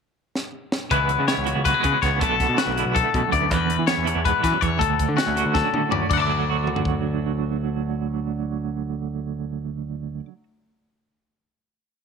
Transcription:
0.35 snare medium
0.72 snare medium
0.91 1.16 C#2 medium
0.91 1.47 C#3 medium
0.91 1.44 E3 medium
0.91 1.64 G#3 medium
0.91 1.28 B3 medium
0.91 1.46 E4 medium
0.91 1.27 B4 medium
0.91 kick loud
0.91 closed hi-hat medium
1.09 closed hi-hat medium
1.20 1.27 C#3 medium
1.28 2.03 B3 medium
1.28 1.65 C#5 medium
1.28 snare medium
1.28 closed hi-hat medium
1.38 1.54 C#2 medium
1.46 2.18 E3 medium
1.46 2.18 F#4 medium
1.46 closed hi-hat medium
1.56 1.72 C#2 medium
1.64 1.74 F#3 medium
1.64 1.82 B4 medium
1.64 kick medium
1.64 snare soft
1.64 closed hi-hat medium
1.74 2.21 G#3 soft
1.83 2.18 C#3 soft
1.83 1.92 C#3 medium
1.83 2.02 B4 medium
1.83 kick medium
1.83 closed hi-hat medium
2.02 2.21 C#2 medium
2.02 2.23 B3 medium
2.02 2.20 C#5 medium
2.02 kick medium
2.02 snare soft
2.02 closed hi-hat medium
2.20 2.46 B1 medium
2.20 2.77 B2 medium
2.20 2.75 D3 soft
2.20 2.95 A3 medium
2.20 2.59 B3 medium
2.20 2.57 A4 medium
2.20 kick medium
2.20 closed hi-hat medium
2.25 2.76 D4 medium
2.40 kick medium
2.40 snare soft
2.40 closed hi-hat medium
2.49 2.57 B2 medium
2.58 3.31 B3 soft
2.58 2.95 F#4 medium
2.58 snare medium
2.58 closed hi-hat medium
2.67 2.84 B1 medium
2.76 4.05 D3 medium
2.76 3.48 E4 soft
2.76 closed hi-hat medium
2.85 3.02 B1 medium
2.95 3.49 A3 medium
2.95 3.32 A4 medium
2.95 kick medium
2.95 closed hi-hat medium
3.14 3.48 F#2 medium
3.14 3.22 B2 medium
3.14 kick medium
3.14 closed hi-hat soft
3.32 3.51 D2 medium
3.32 3.48 B3 medium
3.32 3.51 D5 medium
3.32 kick medium
3.32 closed hi-hat medium
3.51 3.76 E2 medium
3.51 4.24 E2 medium
3.51 3.87 B4 medium
3.51 kick medium
3.51 closed hi-hat medium
3.70 closed hi-hat medium
3.79 3.87 E3 medium
3.87 4.79 B3 soft
3.87 4.24 C#5 medium
3.87 snare loud
3.87 closed hi-hat medium
3.97 4.14 E2 medium
4.05 4.78 E3 medium
4.05 5.36 D4 medium
4.05 closed hi-hat medium
4.15 4.32 E2 medium
4.25 4.43 G#2 medium
4.25 4.42 B4 medium
4.25 kick medium
4.25 closed hi-hat medium
4.43 4.61 F#2 medium
4.43 4.52 E3 medium
4.43 4.61 B4 medium
4.43 kick medium
4.43 snare soft
4.43 closed hi-hat medium
4.61 4.79 E2 medium
4.61 4.81 E2 medium
4.61 4.80 C#5 medium
4.61 kick medium
4.61 closed hi-hat medium
4.79 6.09 D2 medium
4.79 5.06 D2 medium
4.79 5.16 A4 medium
4.79 kick loud
4.79 closed hi-hat medium
4.99 kick medium
4.99 closed hi-hat medium
5.09 5.17 D3 medium
5.17 5.91 C#4 medium
5.17 5.54 F#4 medium
5.17 snare medium
5.17 closed hi-hat medium
5.27 5.44 D2 medium
5.36 6.18 D3 medium
5.36 6.09 F#4 medium
5.36 closed hi-hat medium
5.46 5.62 D2 medium
5.54 6.29 F#3 medium
5.54 5.91 A4 medium
5.54 kick medium
5.54 snare soft
5.73 6.11 A2 medium
5.73 5.82 D3 medium
5.73 mid tom medium
5.91 6.00 D2 medium
5.91 6.09 C#4 medium
5.91 6.08 D5 medium
5.91 floor tom medium
6.10 10.23 D2 medium
6.10 10.20 D2 medium
6.10 10.19 D5 medium
6.10 6.18 F#5 medium
6.10 kick medium
6.10 crash medium
6.18 10.28 D3 medium
6.18 6.21 A5 medium
6.22 10.25 D6 medium
6.30 10.33 F#3 medium
6.50 10.43 F#4 medium
6.67 mid tom soft
6.76 floor tom medium
6.85 kick medium

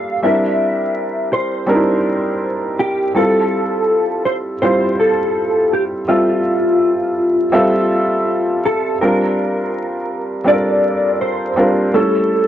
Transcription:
0.00 0.13 G3 medium
0.00 0.14 A#3 medium
0.00 0.14 D4 medium
0.00 0.14 F4 medium
0.00 0.15 A4 medium
0.00 0.23 F5 loud
0.23 1.61 G3 medium
0.23 1.61 C4 medium
0.23 1.61 D4 medium
0.23 1.62 E4 medium
0.23 1.62 A#4 medium
0.23 1.32 E5 loud
1.33 2.79 C5 medium
1.67 3.06 G3 medium
1.67 3.06 C4 medium
1.67 3.07 D4 medium
1.67 1.76 D#4 medium
1.67 3.07 A#4 medium
1.75 3.10 E4 medium
2.79 3.16 G4 medium
3.15 4.53 G3 medium
3.15 4.53 C4 medium
3.15 4.53 E4 medium
3.15 4.54 F4 medium
3.15 4.25 A4 loud
3.15 4.54 A4 medium
4.25 4.35 C5 medium
4.62 6.00 G3 medium
4.62 6.00 C4 medium
4.62 6.00 E4 medium
4.62 6.01 F4 medium
4.62 4.96 C5 loud
4.62 6.01 C5 medium
5.00 5.74 A4 loud
5.73 5.83 G4 medium
6.07 7.46 G3 medium
6.07 7.46 C4 medium
6.07 8.60 F4 medium
6.07 7.47 F4 medium
6.07 7.47 A4 medium
6.07 7.46 E5 medium
7.52 8.91 G3 medium
7.52 8.91 C4 medium
7.52 8.92 F4 medium
7.52 8.92 A4 loud
7.52 8.92 E5 medium
8.66 9.01 A4 medium
9.01 10.39 G3 medium
9.01 10.39 C4 medium
9.01 10.40 D4 medium
9.01 10.40 F4 medium
9.01 10.43 A#4 medium
9.01 10.40 A#4 medium
10.44 11.49 G3 medium
10.44 11.49 C4 medium
10.44 11.50 D4 medium
10.44 11.50 F4 medium
10.44 10.55 A4 medium
10.44 11.21 D5 loud
10.53 11.54 A#4 medium
11.21 11.96 C5 medium
11.56 11.91 G3 medium
11.56 11.91 C4 medium
11.56 11.91 D4 medium
11.56 11.92 F4 medium
11.56 11.92 A#4 medium
11.94 12.47 G3 medium
11.94 12.47 A3 medium
11.94 12.47 C#4 medium
11.94 12.47 E4 medium
11.94 12.47 A4 loud
11.94 12.47 A4 medium

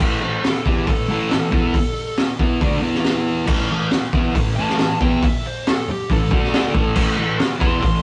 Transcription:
0.00 0.20 A2 medium
0.00 0.20 E3 loud
0.00 0.22 A3 loud
0.00 kick loud
0.00 crash loud
0.04 0.24 E5 medium
0.21 0.39 A2 medium
0.21 0.40 E3 medium
0.21 0.45 C5 medium
0.44 0.66 A4 medium
0.44 snare loud
0.44 open hi-hat medium
0.66 0.87 E3 medium
0.66 0.88 B3 medium
0.66 0.88 E4 loud
0.66 0.88 G4 medium
0.66 kick loud
0.87 1.05 A2 medium
0.87 1.06 E3 medium
0.87 2.15 A4 medium
0.87 kick loud
0.87 open hi-hat medium
1.08 1.30 A2 medium
1.08 1.30 E3 loud
1.08 1.31 A3 loud
1.31 1.49 A2 medium
1.31 1.49 E3 medium
1.31 snare loud
1.31 open hi-hat medium
1.52 1.74 E3 medium
1.52 1.74 B3 medium
1.52 1.75 E4 loud
1.52 kick loud
1.74 kick loud
1.74 open hi-hat medium
2.17 snare loud
2.17 open hi-hat medium
2.39 2.61 E3 medium
2.39 2.62 B3 medium
2.39 2.62 E4 loud
2.39 kick loud
2.61 2.81 D3 loud
2.61 2.82 A3 loud
2.61 2.83 D4 loud
2.61 kick loud
2.61 open hi-hat medium
2.82 3.46 E3 medium
2.82 3.47 B3 loud
2.82 3.48 E4 medium
2.94 snare soft
3.04 snare loud
3.04 open hi-hat medium
3.46 3.69 A2 loud
3.46 3.69 E3 loud
3.46 3.70 A3 medium
3.46 kick loud
3.46 crash loud
3.71 3.88 A2 medium
3.71 3.88 E3 medium
3.91 snare loud
3.91 open hi-hat medium
4.13 4.34 E3 medium
4.13 4.35 B3 medium
4.13 4.36 E4 loud
4.13 kick loud
4.13 snare soft
4.35 4.53 A2 medium
4.35 4.53 E3 medium
4.35 kick medium
4.35 open hi-hat medium
4.56 4.77 A2 medium
4.56 4.77 E3 loud
4.56 4.79 A3 loud
4.56 4.99 A5 loud
4.69 snare soft
4.78 4.96 A2 medium
4.78 4.97 E3 medium
4.78 snare loud
4.78 open hi-hat medium
5.00 5.22 E3 loud
5.00 5.22 B3 loud
5.00 5.23 E4 loud
5.00 5.23 G5 medium
5.00 kick loud
5.23 5.45 E5 loud
5.23 kick loud
5.23 open hi-hat medium
5.47 5.67 C5 medium
5.67 5.89 A4 loud
5.67 snare loud
5.67 open hi-hat medium
5.88 6.11 G4 medium
5.88 muted distorted electric guitar stroke medium
6.10 6.28 A2 medium
6.10 6.29 E3 medium
6.10 7.38 A4 loud
6.10 kick loud
6.10 open hi-hat medium
6.31 6.74 D3 medium
6.31 6.74 A3 medium
6.31 6.75 D4 loud
6.31 kick loud
6.43 snare soft
6.53 snare loud
6.53 open hi-hat medium
6.74 6.96 A2 loud
6.74 6.96 E3 loud
6.74 6.96 A3 loud
6.74 kick loud
6.95 7.16 A2 medium
6.95 7.17 E3 loud
6.95 7.18 A3 loud
6.95 kick loud
6.95 crash loud
7.17 7.35 A2 medium
7.17 7.36 E3 medium
7.39 snare loud
7.39 open hi-hat medium
7.59 7.80 E3 loud
7.59 7.81 B3 loud
7.59 7.82 E4 loud
7.59 8.02 C6 loud
7.59 kick loud
7.59 snare soft
7.81 8.00 A2 medium
7.81 8.00 E3 medium
7.81 kick loud
7.81 open hi-hat medium

